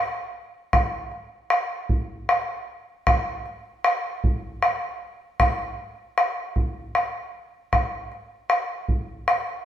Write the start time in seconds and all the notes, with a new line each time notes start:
0.15 bombo rim
0.73 bombo rim, bombo low
1.12 bombo rim
1.50 bombo rim
1.89 bombo low
2.29 bombo rim
2.48 bombo rim
3.07 bombo rim, bombo low
3.46 bombo rim
3.84 bombo rim
4.24 bombo low
4.62 bombo rim
4.81 bombo rim
5.40 bombo rim, bombo low
5.59 bombo rim
6.18 bombo rim
6.56 bombo rim, bombo low
6.95 bombo rim
7.73 bombo rim, bombo low
8.12 bombo rim
8.50 bombo rim
8.88 bombo low
9.28 bombo rim
9.47 bombo rim